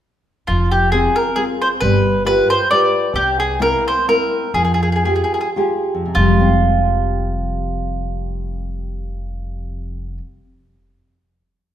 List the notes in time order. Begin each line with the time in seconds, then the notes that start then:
0.47 F1 F3 F4
0.71 G4
0.92 C4 F4 G#4
1.16 A#4
1.36 C4 F4 G#4
1.62 C5
1.80 G1 G3 B4
2.25 F4 G4 B4
2.50 C5
2.71 F4 G4 B4 D5
3.14 C2 C3 G4
3.40 G#4
3.60 A#3 C4 E4 A#4
3.88 C5
4.08 A#3 C4 E4 A#4
4.54 F2 F3 G#4
4.64 G#4
4.74 G#4
4.83 G#4
4.92 G#4
5.05 F4 G4 G#4
5.16 G#4
5.24 G#4
5.34 G#4
5.41 G#4
5.56 F4 G4 G#4
5.95 F2
6.05 C3
6.15 F1 G3 F4
6.28 G#3
6.41 C4